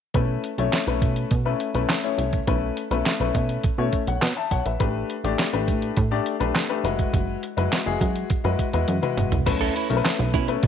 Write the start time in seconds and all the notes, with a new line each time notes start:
0.14 B1 A3 C#4 E4 B4, kick, closed hi-hat
0.44 closed hi-hat
0.58 B1 A3 C#4 E4 C#5, closed hi-hat
0.73 snare, clap, closed hi-hat
0.87 B1 A3 C#4 E4 B4, closed hi-hat
1.02 B2, kick, closed hi-hat
1.16 closed hi-hat
1.31 B2, kick, closed hi-hat
1.45 A3 C#4 E4 B4
1.60 closed hi-hat
1.74 B1 A3 C#4 E4 B4, closed hi-hat
1.89 snare, clap, closed hi-hat
2.03 A3 C#4 E4 C#5, closed hi-hat
2.18 C2, closed hi-hat
2.33 kick, closed hi-hat
2.47 B1 A3 C#4 E4 B4, kick, closed hi-hat
2.77 closed hi-hat
2.91 B1 A3 C#4 E4 B4, closed hi-hat
3.06 snare, clap, closed hi-hat
3.20 B1 A3 C#4 E4 B4, closed hi-hat
3.35 B2, kick, closed hi-hat
3.49 closed hi-hat
3.63 B2, kick, closed hi-hat
3.78 B2 A3 C#4 E4 C#5
3.93 kick, closed hi-hat
4.07 B1 C#5 F#5, closed hi-hat
4.22 B2, snare, clap, closed hi-hat
4.37 E5 A5, closed hi-hat
4.51 B1 C#5 F#5, kick, closed hi-hat
4.66 A#1 B4 E5, closed hi-hat
4.79 A1 A3 D4 G4 B4, kick, closed hi-hat
5.10 closed hi-hat
5.24 A1 A3 D4 G4 D5, closed hi-hat
5.39 snare, clap, closed hi-hat
5.53 A1 A3 D4 G4 B4, closed hi-hat
5.68 A2, kick, closed hi-hat
5.82 closed hi-hat
5.97 A2, kick, closed hi-hat
6.11 A3 D4 G4 D5
6.26 closed hi-hat
6.40 B1 A3 D4 G4 B4, closed hi-hat
6.55 snare, clap, closed hi-hat
6.69 A3 D4 G4 B4, closed hi-hat
6.84 F#1 G#3 E4 F#4 B4, closed hi-hat
6.99 kick, closed hi-hat
7.13 F#1, kick, closed hi-hat
7.43 closed hi-hat
7.57 F#1 G#3 E4 F#4 B4, closed hi-hat
7.72 snare, clap, closed hi-hat
7.85 F#1 G#3 E4 F#4 G#4, closed hi-hat
8.01 F#2, kick, closed hi-hat
8.15 closed hi-hat
8.30 F#2, kick, closed hi-hat
8.44 F#2 G#3 E4 F#4 B4, closed hi-hat
8.59 kick, closed hi-hat
8.73 E2 G#3 E4 F#4 B4, closed hi-hat
8.88 F#2, closed hi-hat, high tom
9.02 G#3 E4 F#4 B4, closed hi-hat, mid tom
9.17 F#1, closed hi-hat, mid tom
9.32 C2, closed hi-hat, floor tom
9.46 B1 A3 C#4 E4 B4, muted clean electric guitar stroke, kick, closed hi-hat, crash
9.61 C#4 E4 A4
9.75 C#4 E4 B4, closed hi-hat
9.89 B1 A3 C#4 E4 A#4, closed hi-hat
9.97 B4
10.05 snare, clap, closed hi-hat
10.19 B1, muted clean electric guitar stroke, closed hi-hat
10.34 B2 C#4 E4 B4, kick, closed hi-hat
10.48 A3 C#4 E4 B4, closed hi-hat
10.63 B2, muted clean electric guitar stroke, kick, closed hi-hat